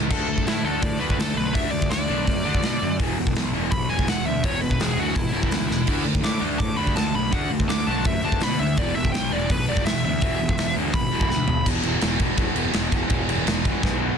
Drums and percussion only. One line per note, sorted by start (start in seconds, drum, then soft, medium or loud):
0.10 kick loud
0.10 crash loud
0.38 kick medium
0.47 snare loud
0.47 open hi-hat medium
0.82 kick loud
0.82 open hi-hat medium
1.10 kick medium
1.20 snare loud
1.20 open hi-hat medium
1.55 kick loud
1.55 open hi-hat medium
1.82 kick medium
1.90 snare loud
1.90 open hi-hat medium
2.27 kick loud
2.27 open hi-hat medium
2.55 kick medium
2.63 snare loud
2.63 open hi-hat medium
3.00 kick loud
3.00 open hi-hat medium
3.27 kick medium
3.35 snare loud
3.35 open hi-hat medium
3.72 kick loud
3.72 open hi-hat medium
3.99 kick medium
4.07 snare loud
4.07 open hi-hat medium
4.44 kick loud
4.44 open hi-hat medium
4.71 kick medium
4.80 snare loud
4.80 open hi-hat medium
5.15 kick loud
5.15 open hi-hat medium
5.43 kick medium
5.51 snare loud
5.51 open hi-hat medium
5.71 snare medium
5.87 kick loud
5.87 open hi-hat medium
5.87 crash medium
6.15 kick medium
6.23 snare loud
6.23 open hi-hat medium
6.60 kick loud
6.60 open hi-hat medium
6.87 kick medium
6.96 snare loud
6.96 open hi-hat medium
7.32 kick loud
7.32 open hi-hat medium
7.60 kick medium
7.69 snare loud
7.69 open hi-hat medium
8.04 kick loud
8.04 open hi-hat medium
8.32 kick medium
8.40 snare loud
8.40 open hi-hat medium
8.77 kick loud
8.77 open hi-hat medium
9.05 kick medium
9.14 snare loud
9.14 open hi-hat medium
9.50 kick loud
9.50 open hi-hat medium
9.77 kick medium
9.86 snare loud
9.86 open hi-hat medium
10.21 kick loud
10.21 open hi-hat medium
10.49 kick loud
10.58 snare loud
10.58 open hi-hat medium
10.94 kick loud
10.94 open hi-hat medium
11.21 kick medium
11.30 snare medium
11.48 floor tom medium
11.66 kick loud
11.66 crash loud
11.66 crash medium
11.83 crash medium
12.01 snare loud
12.01 crash medium
12.19 kick medium
12.19 crash medium
12.37 kick loud
12.37 crash medium
12.56 crash medium
12.73 snare loud
12.73 crash medium
12.92 kick medium
12.92 crash medium
13.10 kick loud
13.10 crash medium
13.29 crash medium
13.47 snare loud
13.47 crash medium
13.65 kick medium
13.65 crash medium
13.83 kick loud
13.83 snare medium